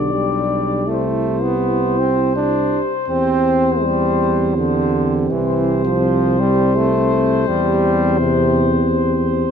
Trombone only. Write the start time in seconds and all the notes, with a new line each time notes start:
Already playing: D3
0.12 G3
0.87 A3
1.43 B3
1.99 C4
2.36 D4
3.08 C4
3.83 G3
4.56 D3
5.30 E3
5.85 F3
6.40 G3
6.76 A3
7.48 G3
8.19 C3